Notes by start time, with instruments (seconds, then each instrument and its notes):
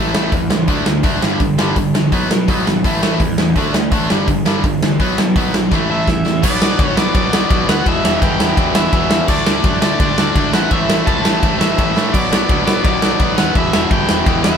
Already playing: picked electric bass A1, distorted electric guitar A2 E3 A3
0.14 picked electric bass A1, distorted electric guitar A2 E3 A3, snare
0.32 picked electric bass E2, distorted electric guitar A2 E3, kick, open hi-hat
0.50 picked electric bass C#2, distorted electric guitar A2 E3, snare
0.68 picked electric bass D2, distorted electric guitar D3 A3 D4, kick, open hi-hat
0.85 picked electric bass D2, distorted electric guitar D3 A3, snare
1.03 picked electric bass F#1, distorted electric guitar D3 A3 D4, kick, open hi-hat
1.22 picked electric bass G1, distorted electric guitar G2 D3 G3, snare
1.40 picked electric bass G1, distorted electric guitar G2 D3, kick, open hi-hat
1.58 picked electric bass G1, distorted electric guitar G2 D3 G3, snare
1.76 picked electric bass G1, distorted electric guitar G2 D3, kick, open hi-hat
1.94 picked electric bass A#1, distorted electric guitar G2 D3, snare
2.12 picked electric bass B1, distorted electric guitar B2 F#3 B3, kick, open hi-hat
2.30 distorted electric guitar B2 F#3, picked electric bass B2, snare
2.48 picked electric bass B1, distorted electric guitar B2 F#3 B3, kick, open hi-hat
2.66 picked electric bass G#1, distorted electric guitar B2 F#3, snare
2.84 picked electric bass A1, distorted electric guitar A2 E3 A3, kick, open hi-hat
3.02 picked electric bass A1, distorted electric guitar A2 E3 A3, snare
3.20 picked electric bass E2, distorted electric guitar A2 E3, kick, open hi-hat
3.38 picked electric bass E2, distorted electric guitar A2 E3, snare
3.56 picked electric bass D2, distorted electric guitar D3 A3 D4, kick, open hi-hat
3.73 picked electric bass D2, distorted electric guitar D3 A3, snare
3.91 picked electric bass A1, distorted electric guitar D3 A3 D4, kick, open hi-hat
4.10 picked electric bass G1, distorted electric guitar G2 D3 G3, snare
4.28 picked electric bass G1, distorted electric guitar G2 D3, kick, open hi-hat
4.45 picked electric bass G1, distorted electric guitar G2 D3 G3, snare
4.64 picked electric bass G1, distorted electric guitar G2 D3, kick, open hi-hat
4.81 picked electric bass A1, distorted electric guitar G2 D3, snare
4.99 picked electric bass B1, distorted electric guitar B2 F#3 B3, kick, open hi-hat
5.18 distorted electric guitar B2 F#3, picked electric bass B2, snare
5.36 picked electric bass B1, distorted electric guitar B2 F#3 B3, kick, open hi-hat
5.53 picked electric bass B1, distorted electric guitar B2 F#3, snare
5.71 picked electric bass A1, distorted electric guitar A2 E3 A3, kick, snare
5.89 picked electric bass A1, distorted electric guitar A2 E3 A3, overdriven electric guitar E5
6.07 picked electric bass E2, distorted electric guitar A2 E3, kick, snare
6.25 picked electric bass E2, distorted electric guitar A2 E3, snare
6.43 picked electric bass B1, distorted electric guitar B2 F#3 B3, overdriven electric guitar D5, kick, crash
6.61 picked electric bass B1, distorted electric guitar B2 F#3 B3, snare
6.79 picked electric bass D2, distorted electric guitar B2 F#3 B3, kick, ride
6.85 overdriven electric guitar C#5
6.96 picked electric bass B1, distorted electric guitar B2 F#3 B3, overdriven electric guitar D5, snare
7.15 picked electric bass B1, distorted electric guitar B2 F#3 B3, overdriven electric guitar D5, kick, ride
7.33 picked electric bass B1, distorted electric guitar B2 F#3 B3, snare
7.50 picked electric bass B1, distorted electric guitar B2 F#3 B3, kick, ride
7.68 picked electric bass D2, distorted electric guitar B2 F#3 B3, overdriven electric guitar F#5, snare
7.86 picked electric bass E1, distorted electric guitar E2 B2 E3, overdriven electric guitar E5, kick, ride
8.04 picked electric bass E1, distorted electric guitar E2 B2 E3, snare
8.22 picked electric bass G1, distorted electric guitar E2 B2 E3, overdriven electric guitar G5, kick, ride
8.39 picked electric bass E1, distorted electric guitar E2 B2 E3, snare
8.57 picked electric bass E1, distorted electric guitar E2 B2 E3, kick, ride
8.75 picked electric bass E1, distorted electric guitar E2 B2 E3, overdriven electric guitar E5, snare
8.93 picked electric bass E1, distorted electric guitar E2 B2 E3, kick, ride
9.10 picked electric bass E2, distorted electric guitar E2 B2 E3, snare
9.28 picked electric bass D2, distorted electric guitar D3 A3 D4, overdriven electric guitar D5, kick, crash
9.46 picked electric bass D2, distorted electric guitar D3 A3 D4, snare
9.64 picked electric bass F#2, distorted electric guitar D3 A3 D4, kick, ride
9.81 picked electric bass D2, distorted electric guitar D3 A3 D4, overdriven electric guitar D5, snare
9.99 picked electric bass D2, distorted electric guitar D3 A3 D4, overdriven electric guitar D5, kick, ride
10.17 picked electric bass D2, distorted electric guitar D3 A3 D4, snare
10.35 picked electric bass D2, distorted electric guitar D3 A3 D4, kick, ride
10.53 picked electric bass A1, distorted electric guitar A2 E3 A3, overdriven electric guitar F#5, snare
10.71 picked electric bass A1, distorted electric guitar A2 E3 A3, overdriven electric guitar E5, kick, ride
10.89 picked electric bass A1, distorted electric guitar A2 E3 A3, snare
11.07 picked electric bass C#2, distorted electric guitar A2 E3 A3, overdriven electric guitar A5, kick, ride
11.25 picked electric bass A1, distorted electric guitar A2 E3 A3, snare
11.43 picked electric bass A1, distorted electric guitar A2 E3 A3, kick, ride
11.59 picked electric bass A1, distorted electric guitar A2 E3 A3, overdriven electric guitar E5, snare
11.78 picked electric bass A1, distorted electric guitar A2 E3 A3, kick, ride
11.96 distorted electric guitar A2 E3 A3, picked electric bass A2, snare
12.13 picked electric bass B1, distorted electric guitar B2 F#3 B3, overdriven electric guitar D5, kick, crash
12.32 picked electric bass B1, distorted electric guitar B2 F#3 B3, snare
12.49 picked electric bass D2, distorted electric guitar B2 F#3 B3, kick, ride
12.66 picked electric bass B1, distorted electric guitar B2 F#3 B3, overdriven electric guitar D5, snare
12.84 picked electric bass B1, distorted electric guitar B2 F#3 B3, overdriven electric guitar D5, kick, ride
13.02 picked electric bass B1, distorted electric guitar B2 F#3 B3, snare
13.19 picked electric bass B1, distorted electric guitar B2 F#3 B3, kick, ride
13.37 picked electric bass D#2, distorted electric guitar B2 F#3 B3, overdriven electric guitar F#5, snare
13.55 picked electric bass E1, distorted electric guitar E2 B2 E3, overdriven electric guitar E5, kick, ride
13.73 picked electric bass E1, distorted electric guitar E2 B2 E3, snare
13.91 picked electric bass G1, distorted electric guitar E2 B2 E3, overdriven electric guitar G5, kick, ride
14.09 picked electric bass E1, distorted electric guitar E2 B2 E3, snare
14.26 picked electric bass E1, distorted electric guitar E2 B2 E3, kick, ride
14.44 picked electric bass E1, distorted electric guitar E2 B2 E3, overdriven electric guitar E5, snare